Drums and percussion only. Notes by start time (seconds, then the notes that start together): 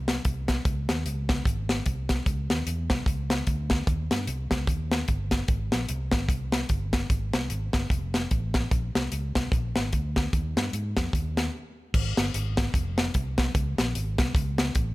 0.08 snare, closed hi-hat
0.25 kick, closed hi-hat
0.48 kick, snare, closed hi-hat
0.65 kick, closed hi-hat
0.89 snare, closed hi-hat
1.06 closed hi-hat
1.29 kick, snare, closed hi-hat
1.45 kick, closed hi-hat
1.69 snare, closed hi-hat
1.86 kick, closed hi-hat
2.09 kick, snare, closed hi-hat
2.26 kick, closed hi-hat
2.50 snare, closed hi-hat
2.67 closed hi-hat
2.90 kick, snare, closed hi-hat
3.06 kick, closed hi-hat
3.30 snare, closed hi-hat
3.47 kick, closed hi-hat
3.70 kick, snare, closed hi-hat
3.87 kick, closed hi-hat
4.11 snare, closed hi-hat
4.27 closed hi-hat
4.51 kick, snare, closed hi-hat
4.67 kick, closed hi-hat
4.91 snare, closed hi-hat
5.08 kick, closed hi-hat
5.31 kick, snare, closed hi-hat
5.48 kick, closed hi-hat
5.72 snare, closed hi-hat
5.89 closed hi-hat
6.12 kick, snare, closed hi-hat
6.29 kick, closed hi-hat
6.52 snare, closed hi-hat
6.69 kick, closed hi-hat
6.93 kick, snare, closed hi-hat
7.10 kick, closed hi-hat
7.33 snare, closed hi-hat
7.50 closed hi-hat
7.73 kick, snare, closed hi-hat
7.90 kick, closed hi-hat
8.14 snare, closed hi-hat
8.31 kick, closed hi-hat
8.54 kick, snare, closed hi-hat
8.71 kick, closed hi-hat
8.95 snare, closed hi-hat
9.12 closed hi-hat
9.35 kick, snare, closed hi-hat
9.52 kick, closed hi-hat
9.76 snare, closed hi-hat
9.93 kick, closed hi-hat
10.16 kick, snare, closed hi-hat
10.33 kick, closed hi-hat
10.57 snare, closed hi-hat
10.73 closed hi-hat
10.97 kick, snare, closed hi-hat
11.13 kick, closed hi-hat
11.37 snare, closed hi-hat
11.94 kick, crash
12.17 snare, closed hi-hat
12.34 closed hi-hat
12.57 kick, snare, closed hi-hat
12.74 kick, closed hi-hat
12.98 snare, closed hi-hat
13.14 kick, closed hi-hat
13.38 kick, snare, closed hi-hat
13.55 kick, closed hi-hat
13.78 snare, closed hi-hat
13.95 closed hi-hat
14.18 kick, snare, closed hi-hat
14.35 kick, closed hi-hat
14.58 snare, closed hi-hat
14.75 kick, closed hi-hat